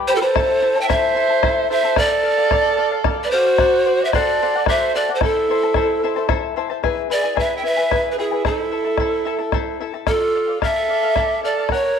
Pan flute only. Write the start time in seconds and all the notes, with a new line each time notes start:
0.08 C5
0.15 A4
0.22 C5
0.81 G5
0.89 E5
1.72 E5
1.98 D5
3.24 D5
3.31 C5
4.05 E5
4.13 D5
4.69 E5
4.95 D5
5.15 C5
5.24 A4
7.12 D5
7.40 E5
7.57 G5
7.65 E5
8.11 B4
8.19 G#4
8.46 A4
10.08 A4
10.64 E5
11.45 D5
11.73 C#5